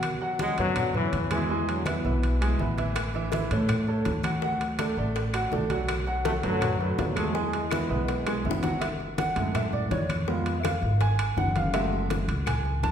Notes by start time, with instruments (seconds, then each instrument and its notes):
Already playing: upright bass B2, upright piano F#3 F#4 F#5
0.02 high conga, high timbale, claves
0.21 upright piano F#3 F#4 F#5, high conga
0.39 trombone section D3 G#3, upright piano F#3 F#4 F#5, high conga, high timbale
0.58 upright bass F#2, trombone section D3 F#3, upright piano B3 B4 C#5, high conga, high timbale
0.76 high conga, low conga, high timbale, claves
0.94 trombone section C#3 E3, upright piano B3 B4 C#5, high conga, low conga
1.13 upright bass E2, high conga, high timbale
1.31 trombone section B2 E3, upright piano G#3 G#4 G#5, high conga, high timbale, claves
1.49 upright piano G#3 G#4 G#5, high conga
1.67 trombone section D3 F#3, high conga, high timbale
1.86 trombone section B2 E3, upright piano B3 B4 E5, high conga, high timbale, claves
2.04 upright bass B1, upright piano B3 B4 E5, high conga
2.23 high conga, high timbale
2.41 upright piano G#3 G#4 G#5, high conga, high timbale, claves
2.59 upright bass A1, upright piano B3 B4 E5, high conga
2.77 upright piano E3 E4 E5, high conga, high timbale
2.96 high bongo, high conga, high timbale, claves
3.14 upright piano E3 E4 E5, high bongo, high conga
3.32 upright piano E3 E4 E5, high bongo, high conga, high timbale
3.51 upright bass A2, upright piano A3 A4 C#5, high conga, high timbale
3.69 high bongo, high conga, low conga, high timbale, claves
3.87 upright piano A3 A4 C#5, high bongo, high conga
4.05 upright bass D2, high bongo, low bongo, high conga, high timbale
4.23 upright piano F#3 F#4 F#5, high bongo, high conga, high timbale, claves
4.42 upright piano F#3 F#4 F#5, high bongo, high conga
4.61 high bongo, high conga, high timbale
4.79 upright piano A3 A4 D5, high bongo, high conga, high timbale, claves
4.97 upright bass A1, upright piano A3 A4 D5, high conga
5.15 high bongo, high conga, high timbale
5.33 upright piano F#3 F#4 F#5, high bongo, high conga, high timbale, claves
5.52 upright bass B1, upright piano A3 A4 D5, high bongo, low bongo, high conga
5.70 upright piano F#3 F#4 F#5, high bongo, high conga, high timbale
5.88 high bongo, high conga, high timbale, claves
6.06 upright piano F#3 F#4 F#5, high bongo, high conga
6.25 upright piano F#3 F#4 F#5, trombone section F#3 A3, high bongo, high conga, high timbale
6.43 upright bass F#2, trombone section D3 F#3, upright piano A3 A4 B4, high conga, high timbale
6.61 high bongo, high conga, low conga, high timbale, claves
6.80 trombone section D3 F#3, upright piano A3 A4 B4, high bongo, high conga
6.98 upright bass E2, high bongo, low bongo, high conga, high timbale, low timbale
7.16 trombone section F#3 A3, upright piano G#3 G#4 G#5, high bongo, high conga, high timbale, claves
7.34 trombone section E3 G#3, upright piano G#3 G#4 G#5, high bongo, high conga
7.53 high bongo, high conga, high timbale
7.71 upright piano B3 B4 E5, high bongo, high conga, high timbale, claves
7.89 upright bass B1, upright piano B3 B4 E5, high conga
8.08 high bongo, high conga, high timbale
8.26 upright piano G#3 G#4 G#5, high bongo, high conga, high timbale, claves
8.45 upright bass F#1, upright piano B3 B4 E5, high conga
8.51 low bongo
8.63 upright piano F#3 F#4 F#5, low bongo, high conga, high timbale
8.81 upright piano E5, high bongo, high conga, high timbale, claves
9.00 high bongo, high conga
9.18 upright piano F#5, high bongo, high conga, high timbale
9.35 upright bass F#2, upright piano G#3 A3 E4, high conga, high timbale
9.55 upright piano E5, high bongo, high conga, low conga, high timbale, claves
9.72 upright piano D5, high bongo, high conga, low conga
9.91 upright bass F2, upright piano C#5, high bongo, low bongo, high conga, high timbale
10.09 high bongo, high conga, high timbale, claves
10.28 upright piano G#3 B3 F4, high bongo, high conga
10.46 high bongo, high conga, high timbale
10.60 upright piano E5, claves
10.64 upright piano F5, high bongo, high conga, high timbale
10.82 upright bass G#1, high conga
11.01 upright piano G#5, high bongo, high conga, high timbale
11.19 high bongo, high conga, high timbale, claves
11.37 upright bass F#1, upright piano F#5, high bongo, low bongo, high conga
11.56 upright piano F5, high bongo, high conga, high timbale
11.74 upright piano G#3 A3 F#4 E5, high bongo, high conga, high timbale, claves
11.93 high bongo, high conga
12.10 high bongo, high conga, high timbale
12.28 upright bass C#2, high conga, high timbale
12.46 upright piano G#5, high bongo, high conga, low conga, high timbale, claves
12.65 high bongo, high conga
12.83 upright bass E2, upright piano A5, high bongo, low bongo, high conga, high timbale